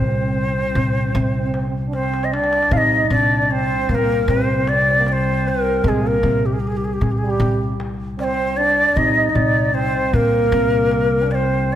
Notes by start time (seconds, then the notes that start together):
Already playing: C2 C3 C5
0.05 C4
0.11 C4
0.19 C4
0.26 C4
0.32 C4
0.38 C4, darbuka ka
0.47 C4
0.54 C4
0.60 C4
0.69 C4
0.75 C3 C4, darbuka dum
0.84 C4
0.91 C4
0.98 C4
1.06 C4
1.14 C3 C4, darbuka dum
1.21 C4
1.29 C4
1.36 C4
1.45 C4
1.54 C4, darbuka tek
1.61 C4
1.68 C4
1.88 D4
1.93 C4 C5, darbuka tek
2.03 darbuka ka
2.14 darbuka tek
2.23 D#5, darbuka ka
2.32 D4 D5, darbuka tek
2.44 darbuka ka
2.53 darbuka tek
2.62 darbuka ka
2.71 C2 C3 D#4 F5, darbuka dum
2.77 D#5
3.10 C3 D4 D5, darbuka dum
3.42 D5
3.51 C4 C5, darbuka ka
3.89 C3 A#3 C5, darbuka dum
3.94 C4 A#4
4.03 A#3
4.27 C3 C4 C5, darbuka dum
4.35 C4
4.43 C4
4.51 C4
4.56 C4
4.65 C4 D5, darbuka tek
4.72 C4
4.81 C4
4.88 C4
4.95 A#3 C4
5.04 C4, darbuka tek
5.08 D5
5.12 C5
5.48 A#4
5.84 C3 G#3, darbuka dum
5.88 G#4
6.05 A#3 A#4
6.23 C3, darbuka dum
6.46 G4
6.53 G#4
6.60 G4, darbuka ka
6.67 G#4
6.77 G4
6.85 G#4
6.93 G4
7.01 C3 G#4, darbuka dum
7.11 G4
7.18 G#4
7.23 G3 G#4
7.30 G4
7.40 C3, darbuka dum
7.80 darbuka tek
8.18 C4 D5, darbuka tek
8.24 C5
8.57 D4 D5, darbuka ka
8.95 C2 C3 D#4 D#5, darbuka dum
9.29 D#5
9.35 C3 D5, darbuka dum
9.73 C4 C5, darbuka ka
10.13 C3 A#3 A#4, darbuka dum
10.52 C3, darbuka dum
10.91 darbuka tek
11.22 D4
11.30 C4 D5, darbuka tek
11.35 C5